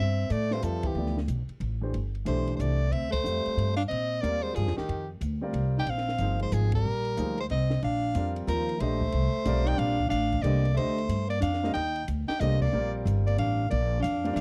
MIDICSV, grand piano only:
0, 0, Header, 1, 2, 480
1, 0, Start_track
1, 0, Tempo, 326619
1, 1412, Time_signature, 3, 2, 24, 8
1, 21173, End_track
2, 0, Start_track
2, 0, Title_t, "Grand piano"
2, 0, Program_c, 0, 0
2, 756, Note_on_c, 0, 55, 51
2, 766, Note_on_c, 0, 60, 53
2, 773, Note_on_c, 0, 65, 56
2, 778, Note_on_c, 0, 71, 52
2, 792, Note_on_c, 0, 76, 59
2, 1377, Note_off_c, 0, 55, 0
2, 1382, Note_off_c, 0, 60, 0
2, 1386, Note_off_c, 0, 65, 0
2, 1388, Note_off_c, 0, 71, 0
2, 1395, Note_off_c, 0, 76, 0
2, 1408, Note_on_c, 0, 53, 41
2, 1412, Note_on_c, 0, 59, 39
2, 1421, Note_on_c, 0, 64, 42
2, 1427, Note_on_c, 0, 69, 38
2, 1437, Note_on_c, 0, 74, 50
2, 1685, Note_off_c, 0, 53, 0
2, 1687, Note_off_c, 0, 59, 0
2, 1691, Note_off_c, 0, 64, 0
2, 1694, Note_off_c, 0, 69, 0
2, 1700, Note_off_c, 0, 74, 0
2, 2664, Note_on_c, 0, 52, 50
2, 2675, Note_on_c, 0, 57, 51
2, 2678, Note_on_c, 0, 62, 45
2, 2693, Note_on_c, 0, 72, 62
2, 2694, Note_on_c, 0, 67, 49
2, 2829, Note_off_c, 0, 52, 0
2, 2835, Note_off_c, 0, 57, 0
2, 2836, Note_off_c, 0, 62, 0
2, 2844, Note_off_c, 0, 67, 0
2, 2844, Note_off_c, 0, 72, 0
2, 3309, Note_on_c, 0, 52, 57
2, 3325, Note_on_c, 0, 57, 49
2, 3325, Note_on_c, 0, 62, 55
2, 3338, Note_on_c, 0, 67, 49
2, 3342, Note_on_c, 0, 72, 68
2, 4046, Note_off_c, 0, 52, 0
2, 4054, Note_off_c, 0, 57, 0
2, 4055, Note_off_c, 0, 62, 0
2, 4061, Note_off_c, 0, 67, 0
2, 4063, Note_off_c, 0, 72, 0
2, 4761, Note_on_c, 0, 55, 49
2, 4761, Note_on_c, 0, 60, 44
2, 4773, Note_on_c, 0, 72, 44
2, 4774, Note_on_c, 0, 65, 39
2, 4784, Note_on_c, 0, 76, 50
2, 5493, Note_off_c, 0, 60, 0
2, 5494, Note_off_c, 0, 55, 0
2, 5500, Note_off_c, 0, 65, 0
2, 5500, Note_off_c, 0, 72, 0
2, 5505, Note_off_c, 0, 76, 0
2, 6205, Note_on_c, 0, 55, 47
2, 6215, Note_on_c, 0, 60, 50
2, 6223, Note_on_c, 0, 65, 46
2, 6232, Note_on_c, 0, 70, 49
2, 6234, Note_on_c, 0, 74, 59
2, 6936, Note_off_c, 0, 55, 0
2, 6942, Note_off_c, 0, 60, 0
2, 6946, Note_off_c, 0, 65, 0
2, 6950, Note_off_c, 0, 70, 0
2, 6951, Note_off_c, 0, 74, 0
2, 7957, Note_on_c, 0, 55, 64
2, 7965, Note_on_c, 0, 60, 53
2, 7971, Note_on_c, 0, 65, 58
2, 7971, Note_on_c, 0, 70, 53
2, 7980, Note_on_c, 0, 74, 69
2, 8583, Note_off_c, 0, 55, 0
2, 8587, Note_off_c, 0, 60, 0
2, 8590, Note_off_c, 0, 65, 0
2, 8590, Note_off_c, 0, 70, 0
2, 8594, Note_off_c, 0, 74, 0
2, 9107, Note_on_c, 0, 53, 51
2, 9114, Note_on_c, 0, 58, 49
2, 9123, Note_on_c, 0, 63, 52
2, 9130, Note_on_c, 0, 68, 43
2, 9135, Note_on_c, 0, 72, 58
2, 9830, Note_off_c, 0, 53, 0
2, 9834, Note_off_c, 0, 58, 0
2, 9838, Note_off_c, 0, 63, 0
2, 9841, Note_off_c, 0, 68, 0
2, 9844, Note_off_c, 0, 72, 0
2, 10536, Note_on_c, 0, 58, 51
2, 10539, Note_on_c, 0, 53, 51
2, 10548, Note_on_c, 0, 63, 47
2, 10559, Note_on_c, 0, 68, 54
2, 10567, Note_on_c, 0, 72, 54
2, 10815, Note_off_c, 0, 58, 0
2, 10817, Note_off_c, 0, 53, 0
2, 10821, Note_off_c, 0, 63, 0
2, 10827, Note_off_c, 0, 68, 0
2, 10831, Note_off_c, 0, 72, 0
2, 11980, Note_on_c, 0, 60, 49
2, 11981, Note_on_c, 0, 55, 57
2, 11996, Note_on_c, 0, 65, 50
2, 12000, Note_on_c, 0, 70, 53
2, 12004, Note_on_c, 0, 74, 59
2, 12707, Note_off_c, 0, 60, 0
2, 12708, Note_off_c, 0, 55, 0
2, 12715, Note_off_c, 0, 65, 0
2, 12717, Note_off_c, 0, 70, 0
2, 12719, Note_off_c, 0, 74, 0
2, 12943, Note_on_c, 0, 57, 63
2, 12944, Note_on_c, 0, 62, 57
2, 12953, Note_on_c, 0, 67, 55
2, 12960, Note_on_c, 0, 72, 56
2, 12964, Note_on_c, 0, 75, 74
2, 13219, Note_off_c, 0, 57, 0
2, 13220, Note_off_c, 0, 62, 0
2, 13224, Note_off_c, 0, 67, 0
2, 13227, Note_off_c, 0, 72, 0
2, 13230, Note_off_c, 0, 75, 0
2, 13887, Note_on_c, 0, 55, 82
2, 13893, Note_on_c, 0, 60, 70
2, 13900, Note_on_c, 0, 65, 72
2, 13912, Note_on_c, 0, 70, 71
2, 13914, Note_on_c, 0, 74, 86
2, 14620, Note_off_c, 0, 55, 0
2, 14623, Note_off_c, 0, 60, 0
2, 14627, Note_off_c, 0, 65, 0
2, 14633, Note_off_c, 0, 70, 0
2, 14634, Note_off_c, 0, 74, 0
2, 15336, Note_on_c, 0, 62, 65
2, 15337, Note_on_c, 0, 57, 66
2, 15349, Note_on_c, 0, 67, 69
2, 15360, Note_on_c, 0, 72, 60
2, 15360, Note_on_c, 0, 75, 81
2, 15615, Note_off_c, 0, 57, 0
2, 15615, Note_off_c, 0, 62, 0
2, 15621, Note_off_c, 0, 67, 0
2, 15627, Note_off_c, 0, 72, 0
2, 15627, Note_off_c, 0, 75, 0
2, 15822, Note_on_c, 0, 57, 63
2, 15830, Note_on_c, 0, 62, 53
2, 15835, Note_on_c, 0, 67, 59
2, 15844, Note_on_c, 0, 72, 57
2, 15850, Note_on_c, 0, 75, 75
2, 16098, Note_off_c, 0, 57, 0
2, 16102, Note_off_c, 0, 62, 0
2, 16104, Note_off_c, 0, 67, 0
2, 16108, Note_off_c, 0, 72, 0
2, 16112, Note_off_c, 0, 75, 0
2, 17095, Note_on_c, 0, 55, 62
2, 17099, Note_on_c, 0, 60, 58
2, 17110, Note_on_c, 0, 65, 50
2, 17116, Note_on_c, 0, 70, 55
2, 17123, Note_on_c, 0, 75, 70
2, 17249, Note_off_c, 0, 55, 0
2, 17251, Note_off_c, 0, 60, 0
2, 17257, Note_off_c, 0, 65, 0
2, 17259, Note_off_c, 0, 70, 0
2, 17263, Note_off_c, 0, 75, 0
2, 18235, Note_on_c, 0, 57, 64
2, 18242, Note_on_c, 0, 62, 64
2, 18249, Note_on_c, 0, 67, 69
2, 18258, Note_on_c, 0, 72, 65
2, 18267, Note_on_c, 0, 75, 74
2, 18502, Note_off_c, 0, 57, 0
2, 18506, Note_off_c, 0, 62, 0
2, 18509, Note_off_c, 0, 67, 0
2, 18514, Note_off_c, 0, 72, 0
2, 18518, Note_off_c, 0, 75, 0
2, 18694, Note_on_c, 0, 55, 68
2, 18705, Note_on_c, 0, 60, 55
2, 18714, Note_on_c, 0, 65, 60
2, 18721, Note_on_c, 0, 70, 59
2, 18727, Note_on_c, 0, 74, 72
2, 20029, Note_off_c, 0, 55, 0
2, 20035, Note_off_c, 0, 60, 0
2, 20039, Note_off_c, 0, 65, 0
2, 20043, Note_off_c, 0, 70, 0
2, 20046, Note_off_c, 0, 74, 0
2, 20927, Note_on_c, 0, 55, 63
2, 20930, Note_on_c, 0, 60, 54
2, 20937, Note_on_c, 0, 65, 60
2, 20953, Note_on_c, 0, 70, 59
2, 20955, Note_on_c, 0, 74, 77
2, 21081, Note_off_c, 0, 55, 0
2, 21083, Note_off_c, 0, 60, 0
2, 21086, Note_off_c, 0, 65, 0
2, 21094, Note_off_c, 0, 70, 0
2, 21095, Note_off_c, 0, 74, 0
2, 21173, End_track
0, 0, End_of_file